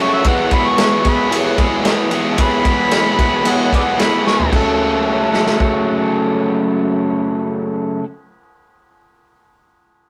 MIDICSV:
0, 0, Header, 1, 4, 480
1, 0, Start_track
1, 0, Key_signature, 3, "minor"
1, 0, Tempo, 537153
1, 228, Time_signature, 4, 2, 24, 8
1, 9021, End_track
2, 0, Start_track
2, 0, Title_t, "Harmonica"
2, 0, Program_c, 0, 22
2, 14, Note_on_c, 0, 73, 83
2, 113, Note_off_c, 0, 73, 0
2, 120, Note_on_c, 0, 76, 82
2, 238, Note_on_c, 0, 78, 94
2, 251, Note_off_c, 0, 76, 0
2, 483, Note_on_c, 0, 83, 103
2, 496, Note_off_c, 0, 78, 0
2, 600, Note_on_c, 0, 85, 91
2, 613, Note_off_c, 0, 83, 0
2, 971, Note_on_c, 0, 83, 86
2, 984, Note_off_c, 0, 85, 0
2, 1188, Note_off_c, 0, 83, 0
2, 2156, Note_on_c, 0, 83, 127
2, 3115, Note_on_c, 0, 78, 96
2, 3129, Note_off_c, 0, 83, 0
2, 3337, Note_off_c, 0, 78, 0
2, 3351, Note_on_c, 0, 71, 56
2, 3351, Note_on_c, 0, 74, 56
2, 3351, Note_on_c, 0, 78, 80
2, 3411, Note_off_c, 0, 71, 0
2, 3414, Note_off_c, 0, 74, 0
2, 3575, Note_on_c, 0, 83, 81
2, 3588, Note_off_c, 0, 78, 0
2, 3806, Note_off_c, 0, 83, 0
2, 3814, Note_on_c, 0, 85, 91
2, 4046, Note_off_c, 0, 85, 0
2, 9021, End_track
3, 0, Start_track
3, 0, Title_t, "Overdriven electric guitar"
3, 0, Program_c, 1, 29
3, 0, Note_on_c, 1, 42, 72
3, 0, Note_on_c, 1, 49, 86
3, 0, Note_on_c, 1, 54, 77
3, 5, Note_on_c, 1, 61, 93
3, 6, Note_on_c, 1, 57, 79
3, 14, Note_on_c, 1, 66, 84
3, 209, Note_off_c, 1, 42, 0
3, 213, Note_off_c, 1, 49, 0
3, 213, Note_on_c, 1, 40, 102
3, 218, Note_off_c, 1, 54, 0
3, 221, Note_off_c, 1, 61, 0
3, 221, Note_on_c, 1, 47, 90
3, 222, Note_off_c, 1, 57, 0
3, 226, Note_off_c, 1, 66, 0
3, 227, Note_on_c, 1, 52, 98
3, 233, Note_on_c, 1, 56, 93
3, 238, Note_on_c, 1, 59, 112
3, 244, Note_on_c, 1, 68, 102
3, 454, Note_off_c, 1, 40, 0
3, 455, Note_off_c, 1, 47, 0
3, 457, Note_on_c, 1, 40, 81
3, 465, Note_off_c, 1, 52, 0
3, 466, Note_on_c, 1, 47, 87
3, 468, Note_on_c, 1, 52, 87
3, 470, Note_off_c, 1, 56, 0
3, 473, Note_off_c, 1, 59, 0
3, 474, Note_on_c, 1, 56, 93
3, 477, Note_on_c, 1, 59, 95
3, 479, Note_off_c, 1, 68, 0
3, 483, Note_on_c, 1, 68, 94
3, 684, Note_off_c, 1, 40, 0
3, 685, Note_off_c, 1, 47, 0
3, 688, Note_on_c, 1, 40, 97
3, 696, Note_off_c, 1, 52, 0
3, 696, Note_off_c, 1, 56, 0
3, 696, Note_on_c, 1, 47, 91
3, 699, Note_on_c, 1, 56, 98
3, 700, Note_on_c, 1, 52, 89
3, 704, Note_off_c, 1, 59, 0
3, 705, Note_off_c, 1, 68, 0
3, 707, Note_on_c, 1, 59, 98
3, 708, Note_on_c, 1, 68, 90
3, 930, Note_off_c, 1, 40, 0
3, 930, Note_off_c, 1, 47, 0
3, 934, Note_on_c, 1, 40, 91
3, 937, Note_off_c, 1, 52, 0
3, 940, Note_on_c, 1, 52, 91
3, 941, Note_off_c, 1, 56, 0
3, 941, Note_on_c, 1, 47, 88
3, 945, Note_on_c, 1, 56, 91
3, 949, Note_off_c, 1, 59, 0
3, 953, Note_on_c, 1, 59, 87
3, 954, Note_off_c, 1, 68, 0
3, 958, Note_on_c, 1, 68, 93
3, 1147, Note_off_c, 1, 40, 0
3, 1154, Note_off_c, 1, 47, 0
3, 1154, Note_off_c, 1, 52, 0
3, 1157, Note_on_c, 1, 40, 95
3, 1158, Note_off_c, 1, 56, 0
3, 1164, Note_on_c, 1, 47, 95
3, 1165, Note_on_c, 1, 52, 91
3, 1166, Note_off_c, 1, 59, 0
3, 1167, Note_off_c, 1, 68, 0
3, 1169, Note_on_c, 1, 56, 97
3, 1177, Note_on_c, 1, 59, 93
3, 1178, Note_on_c, 1, 68, 107
3, 1387, Note_off_c, 1, 40, 0
3, 1395, Note_off_c, 1, 47, 0
3, 1398, Note_on_c, 1, 40, 78
3, 1404, Note_off_c, 1, 52, 0
3, 1405, Note_off_c, 1, 56, 0
3, 1406, Note_on_c, 1, 47, 79
3, 1412, Note_off_c, 1, 59, 0
3, 1415, Note_on_c, 1, 52, 89
3, 1416, Note_on_c, 1, 56, 92
3, 1417, Note_off_c, 1, 68, 0
3, 1423, Note_on_c, 1, 59, 86
3, 1428, Note_on_c, 1, 68, 104
3, 1624, Note_off_c, 1, 40, 0
3, 1634, Note_off_c, 1, 47, 0
3, 1635, Note_on_c, 1, 40, 94
3, 1638, Note_off_c, 1, 52, 0
3, 1641, Note_off_c, 1, 56, 0
3, 1643, Note_off_c, 1, 59, 0
3, 1644, Note_on_c, 1, 47, 87
3, 1649, Note_on_c, 1, 52, 104
3, 1650, Note_off_c, 1, 68, 0
3, 1652, Note_on_c, 1, 56, 96
3, 1654, Note_on_c, 1, 59, 102
3, 1661, Note_on_c, 1, 68, 97
3, 1871, Note_off_c, 1, 40, 0
3, 1877, Note_off_c, 1, 47, 0
3, 1882, Note_off_c, 1, 52, 0
3, 1882, Note_on_c, 1, 40, 74
3, 1888, Note_off_c, 1, 56, 0
3, 1888, Note_on_c, 1, 47, 88
3, 1893, Note_on_c, 1, 52, 76
3, 1896, Note_off_c, 1, 68, 0
3, 1897, Note_off_c, 1, 59, 0
3, 1899, Note_on_c, 1, 56, 73
3, 1906, Note_on_c, 1, 68, 84
3, 1908, Note_on_c, 1, 59, 86
3, 2112, Note_off_c, 1, 40, 0
3, 2115, Note_off_c, 1, 52, 0
3, 2118, Note_off_c, 1, 47, 0
3, 2122, Note_on_c, 1, 40, 91
3, 2125, Note_off_c, 1, 59, 0
3, 2125, Note_on_c, 1, 52, 90
3, 2128, Note_off_c, 1, 56, 0
3, 2128, Note_on_c, 1, 47, 95
3, 2136, Note_on_c, 1, 59, 104
3, 2139, Note_off_c, 1, 68, 0
3, 2139, Note_on_c, 1, 56, 97
3, 2150, Note_on_c, 1, 68, 108
3, 2342, Note_off_c, 1, 40, 0
3, 2352, Note_on_c, 1, 40, 85
3, 2353, Note_off_c, 1, 47, 0
3, 2354, Note_off_c, 1, 52, 0
3, 2364, Note_on_c, 1, 47, 78
3, 2365, Note_off_c, 1, 56, 0
3, 2365, Note_on_c, 1, 52, 91
3, 2366, Note_off_c, 1, 59, 0
3, 2373, Note_off_c, 1, 68, 0
3, 2376, Note_on_c, 1, 56, 81
3, 2377, Note_on_c, 1, 59, 91
3, 2383, Note_on_c, 1, 68, 94
3, 2593, Note_off_c, 1, 40, 0
3, 2601, Note_off_c, 1, 47, 0
3, 2603, Note_on_c, 1, 40, 97
3, 2605, Note_off_c, 1, 52, 0
3, 2612, Note_on_c, 1, 47, 87
3, 2613, Note_off_c, 1, 59, 0
3, 2615, Note_on_c, 1, 52, 82
3, 2616, Note_off_c, 1, 56, 0
3, 2619, Note_off_c, 1, 68, 0
3, 2624, Note_on_c, 1, 59, 102
3, 2626, Note_on_c, 1, 56, 86
3, 2630, Note_on_c, 1, 68, 86
3, 2819, Note_off_c, 1, 40, 0
3, 2830, Note_on_c, 1, 40, 74
3, 2831, Note_off_c, 1, 47, 0
3, 2834, Note_off_c, 1, 52, 0
3, 2839, Note_off_c, 1, 56, 0
3, 2841, Note_off_c, 1, 59, 0
3, 2842, Note_on_c, 1, 47, 79
3, 2845, Note_on_c, 1, 52, 78
3, 2850, Note_off_c, 1, 68, 0
3, 2850, Note_on_c, 1, 56, 89
3, 2852, Note_on_c, 1, 59, 91
3, 2861, Note_on_c, 1, 68, 83
3, 3065, Note_off_c, 1, 40, 0
3, 3072, Note_off_c, 1, 47, 0
3, 3075, Note_on_c, 1, 40, 77
3, 3079, Note_off_c, 1, 52, 0
3, 3082, Note_off_c, 1, 56, 0
3, 3083, Note_on_c, 1, 47, 88
3, 3087, Note_off_c, 1, 59, 0
3, 3090, Note_off_c, 1, 68, 0
3, 3090, Note_on_c, 1, 52, 86
3, 3092, Note_on_c, 1, 56, 86
3, 3098, Note_on_c, 1, 59, 94
3, 3100, Note_on_c, 1, 68, 100
3, 3298, Note_off_c, 1, 40, 0
3, 3298, Note_off_c, 1, 47, 0
3, 3306, Note_off_c, 1, 52, 0
3, 3308, Note_on_c, 1, 40, 81
3, 3309, Note_on_c, 1, 47, 80
3, 3311, Note_off_c, 1, 56, 0
3, 3313, Note_off_c, 1, 59, 0
3, 3317, Note_on_c, 1, 52, 100
3, 3322, Note_off_c, 1, 68, 0
3, 3322, Note_on_c, 1, 56, 83
3, 3323, Note_on_c, 1, 59, 85
3, 3333, Note_on_c, 1, 68, 86
3, 3541, Note_off_c, 1, 40, 0
3, 3546, Note_off_c, 1, 47, 0
3, 3549, Note_off_c, 1, 52, 0
3, 3552, Note_on_c, 1, 40, 99
3, 3554, Note_off_c, 1, 56, 0
3, 3557, Note_on_c, 1, 47, 101
3, 3560, Note_off_c, 1, 59, 0
3, 3560, Note_on_c, 1, 52, 99
3, 3563, Note_off_c, 1, 68, 0
3, 3565, Note_on_c, 1, 56, 84
3, 3571, Note_on_c, 1, 59, 98
3, 3574, Note_on_c, 1, 68, 95
3, 3781, Note_off_c, 1, 40, 0
3, 3790, Note_off_c, 1, 47, 0
3, 3791, Note_on_c, 1, 40, 74
3, 3794, Note_off_c, 1, 52, 0
3, 3797, Note_off_c, 1, 56, 0
3, 3801, Note_on_c, 1, 47, 78
3, 3804, Note_off_c, 1, 68, 0
3, 3805, Note_on_c, 1, 52, 85
3, 3806, Note_off_c, 1, 59, 0
3, 3808, Note_on_c, 1, 56, 84
3, 3815, Note_on_c, 1, 68, 76
3, 3817, Note_on_c, 1, 59, 81
3, 4025, Note_off_c, 1, 40, 0
3, 4029, Note_on_c, 1, 42, 89
3, 4032, Note_off_c, 1, 47, 0
3, 4034, Note_off_c, 1, 52, 0
3, 4035, Note_off_c, 1, 56, 0
3, 4036, Note_on_c, 1, 49, 89
3, 4039, Note_off_c, 1, 68, 0
3, 4040, Note_off_c, 1, 59, 0
3, 4051, Note_on_c, 1, 54, 102
3, 4054, Note_on_c, 1, 57, 99
3, 4062, Note_on_c, 1, 61, 105
3, 4071, Note_on_c, 1, 69, 105
3, 7157, Note_off_c, 1, 42, 0
3, 7164, Note_off_c, 1, 49, 0
3, 7178, Note_off_c, 1, 54, 0
3, 7182, Note_off_c, 1, 57, 0
3, 7189, Note_off_c, 1, 61, 0
3, 7198, Note_off_c, 1, 69, 0
3, 9021, End_track
4, 0, Start_track
4, 0, Title_t, "Drums"
4, 219, Note_on_c, 9, 51, 79
4, 224, Note_on_c, 9, 36, 97
4, 308, Note_off_c, 9, 51, 0
4, 313, Note_off_c, 9, 36, 0
4, 456, Note_on_c, 9, 51, 64
4, 461, Note_on_c, 9, 36, 81
4, 545, Note_off_c, 9, 51, 0
4, 550, Note_off_c, 9, 36, 0
4, 697, Note_on_c, 9, 51, 84
4, 701, Note_on_c, 9, 38, 98
4, 786, Note_off_c, 9, 51, 0
4, 790, Note_off_c, 9, 38, 0
4, 936, Note_on_c, 9, 51, 60
4, 941, Note_on_c, 9, 36, 82
4, 1025, Note_off_c, 9, 51, 0
4, 1030, Note_off_c, 9, 36, 0
4, 1181, Note_on_c, 9, 51, 86
4, 1271, Note_off_c, 9, 51, 0
4, 1412, Note_on_c, 9, 51, 63
4, 1414, Note_on_c, 9, 36, 90
4, 1501, Note_off_c, 9, 51, 0
4, 1504, Note_off_c, 9, 36, 0
4, 1652, Note_on_c, 9, 51, 84
4, 1656, Note_on_c, 9, 38, 89
4, 1741, Note_off_c, 9, 51, 0
4, 1746, Note_off_c, 9, 38, 0
4, 1886, Note_on_c, 9, 51, 65
4, 1975, Note_off_c, 9, 51, 0
4, 2126, Note_on_c, 9, 51, 87
4, 2131, Note_on_c, 9, 36, 95
4, 2216, Note_off_c, 9, 51, 0
4, 2221, Note_off_c, 9, 36, 0
4, 2367, Note_on_c, 9, 51, 67
4, 2370, Note_on_c, 9, 36, 86
4, 2457, Note_off_c, 9, 51, 0
4, 2460, Note_off_c, 9, 36, 0
4, 2604, Note_on_c, 9, 51, 98
4, 2608, Note_on_c, 9, 38, 99
4, 2693, Note_off_c, 9, 51, 0
4, 2698, Note_off_c, 9, 38, 0
4, 2849, Note_on_c, 9, 36, 82
4, 2850, Note_on_c, 9, 51, 59
4, 2938, Note_off_c, 9, 36, 0
4, 2940, Note_off_c, 9, 51, 0
4, 3085, Note_on_c, 9, 51, 95
4, 3175, Note_off_c, 9, 51, 0
4, 3330, Note_on_c, 9, 36, 86
4, 3339, Note_on_c, 9, 51, 74
4, 3419, Note_off_c, 9, 36, 0
4, 3428, Note_off_c, 9, 51, 0
4, 3570, Note_on_c, 9, 51, 86
4, 3574, Note_on_c, 9, 38, 91
4, 3659, Note_off_c, 9, 51, 0
4, 3664, Note_off_c, 9, 38, 0
4, 3817, Note_on_c, 9, 38, 65
4, 3907, Note_off_c, 9, 38, 0
4, 3930, Note_on_c, 9, 43, 73
4, 4019, Note_off_c, 9, 43, 0
4, 4045, Note_on_c, 9, 36, 88
4, 4045, Note_on_c, 9, 49, 79
4, 4134, Note_off_c, 9, 36, 0
4, 4134, Note_off_c, 9, 49, 0
4, 4767, Note_on_c, 9, 38, 54
4, 4857, Note_off_c, 9, 38, 0
4, 4885, Note_on_c, 9, 38, 64
4, 4975, Note_off_c, 9, 38, 0
4, 5007, Note_on_c, 9, 36, 83
4, 5096, Note_off_c, 9, 36, 0
4, 9021, End_track
0, 0, End_of_file